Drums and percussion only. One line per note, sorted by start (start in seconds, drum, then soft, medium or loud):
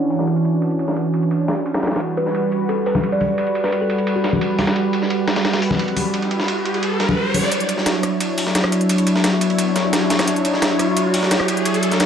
0.10 open hi-hat medium
0.19 snare medium
0.27 ride medium
0.36 ride soft
0.45 open hi-hat medium
0.45 ride medium
0.62 ride medium
0.71 ride soft
0.79 ride medium
0.88 snare soft
0.96 ride medium
1.14 ride medium
1.22 ride soft
1.31 ride medium
1.48 snare medium
1.48 ride medium
1.66 ride medium
1.74 snare medium
1.74 ride medium
1.83 snare medium
1.83 open hi-hat medium
1.83 ride medium
1.87 snare medium
1.87 ride medium
1.91 snare medium
1.91 ride medium
1.96 snare medium
1.96 ride medium
2.00 ride medium
2.17 ride medium
2.26 snare soft
2.35 ride medium
2.52 ride medium
2.69 ride medium
2.86 open hi-hat medium
2.95 snare soft
2.95 high conga medium
3.03 ride medium
3.12 ride soft
3.21 open hi-hat medium
3.21 ride medium
3.21 high conga medium
3.38 ride medium
3.47 ride soft
3.55 ride medium
3.64 snare soft
3.72 ride medium
3.90 ride medium
3.98 ride soft
4.07 ride medium
4.24 snare medium
4.24 ride medium
4.33 high conga medium
4.41 ride medium
4.59 snare loud
4.59 open hi-hat medium
4.59 ride medium
4.59 high conga medium
4.67 snare loud
4.67 ride medium
4.76 ride medium
4.93 ride medium
5.02 snare soft
5.10 ride medium
5.28 snare loud
5.28 ride medium
5.36 snare loud
5.36 ride medium
5.45 snare loud
5.45 ride medium
5.53 snare loud
5.53 ride medium
5.62 open hi-hat medium
5.70 snare medium
5.70 high conga medium
5.79 ride medium
5.88 ride soft
5.96 open hi-hat medium
5.96 ride medium
5.96 high conga medium
6.14 ride medium
6.22 ride soft
6.31 ride medium
6.40 snare medium
6.48 ride medium
6.65 ride medium
6.74 ride soft
6.83 ride medium
7.00 snare medium
7.00 ride medium
7.09 high conga medium
7.34 open hi-hat medium
7.34 ride medium
7.34 high conga medium
7.43 snare soft
7.52 closed hi-hat medium
7.52 ride medium
7.60 closed hi-hat soft
7.69 closed hi-hat medium
7.69 ride medium
7.78 snare soft
7.86 snare loud
7.86 closed hi-hat loud
7.86 ride medium
8.03 cross-stick soft
8.03 closed hi-hat medium
8.03 ride medium
8.20 closed hi-hat medium
8.20 ride medium
8.38 closed hi-hat medium
8.38 open hi-hat medium
8.46 snare medium
8.55 snare loud
8.55 closed hi-hat medium
8.55 ride medium
8.64 cross-stick medium
8.64 ride soft
8.72 closed hi-hat medium
8.72 ride medium
8.81 closed hi-hat soft
8.89 closed hi-hat medium
8.89 ride medium
8.98 closed hi-hat soft
8.98 ride soft
9.07 closed hi-hat medium
9.07 ride medium
9.15 snare medium
9.24 snare loud
9.24 closed hi-hat medium
9.24 ride medium
9.41 closed hi-hat medium
9.41 ride medium
9.50 ride soft
9.58 closed hi-hat medium
9.58 ride medium
9.76 snare medium
9.76 closed hi-hat medium
9.76 ride medium
9.93 snare loud
9.93 closed hi-hat medium
9.93 ride medium
10.10 snare loud
10.10 closed hi-hat medium
10.10 ride medium
10.19 cross-stick soft
10.19 snare loud
10.19 closed hi-hat soft
10.19 ride medium
10.28 closed hi-hat medium
10.28 ride medium
10.36 closed hi-hat soft
10.45 closed hi-hat medium
10.45 ride medium
10.54 snare soft
10.62 snare loud
10.62 closed hi-hat medium
10.62 ride medium
10.79 cross-stick soft
10.79 closed hi-hat medium
10.79 ride medium
10.97 closed hi-hat medium
10.97 ride medium
11.14 closed hi-hat medium
11.14 open hi-hat medium
11.23 snare medium
11.31 snare loud
11.31 closed hi-hat medium
11.31 ride medium
11.40 cross-stick medium
11.40 ride soft
11.48 closed hi-hat medium
11.48 ride medium
11.57 closed hi-hat soft
11.66 closed hi-hat medium
11.66 ride medium
11.74 closed hi-hat soft
11.74 ride soft
11.83 closed hi-hat medium
11.83 ride medium
11.92 snare medium
11.92 closed hi-hat soft
12.00 snare loud
12.00 closed hi-hat medium
12.00 ride medium